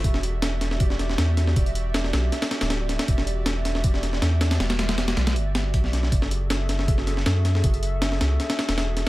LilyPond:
<<
  \new Staff \with { instrumentName = "Analog synth pad" } { \time 4/4 \key e \dorian \tempo 4 = 158 <fis' g' d'' e''>1~ | <fis' g' d'' e''>1~ | <fis' g' d'' e''>1~ | <fis' g' d'' e''>1 |
<fis' gis' a' e''>1~ | <fis' gis' a' e''>1 | }
  \new Staff \with { instrumentName = "Sub bass" } { \clef bass \time 4/4 \key e \dorian e,,2. e,4 | e,,4. b,,8 r8. d,,4 r16 | e,,2. e,4 | e,,4. b,,8 g,,4 b,,4 |
fis,,2. fis,4 | fis,,4. cis,8 r8. e,,4 r16 | }
  \new DrumStaff \with { instrumentName = "Drums" } \drummode { \time 4/4 <hh bd>16 sn16 hh8 <hh sn>8 <hh sn>16 sn16 <hh bd>16 sn16 <hh sn>16 sn16 <hh sn>8 <hh sn>16 sn16 | <hh bd>16 hh16 hh8 <hh sn>16 sn16 <hh sn>8 <hh sn>16 <hh sn>16 <hh sn>16 <hh sn>16 <hh sn>8 <hh sn>16 <hh sn>16 | <hh bd>16 sn16 hh8 <hh sn>8 <hh sn>16 sn16 <hh bd>16 sn16 <hh sn>16 sn16 <hh sn>8 <hh sn>16 <hh sn>16 | <hh sn>16 <hh sn>16 <hh sn>16 <hh sn>16 <hh sn>16 <hh sn>16 <hh sn>16 <hh sn>16 hh8 <hh sn>8 <hh bd>16 sn16 <hh sn>16 sn16 |
<hh bd>16 sn16 hh8 <hh sn>8 <hh sn>16 sn16 <hh bd>16 sn16 <hh sn>16 sn16 <hh sn>8 <hh sn>16 sn16 | <hh bd>16 hh16 hh8 <hh sn>16 sn16 <hh sn>8 <hh sn>16 <hh sn>16 <hh sn>16 <hh sn>16 <hh sn>8 <hh sn>8 | }
>>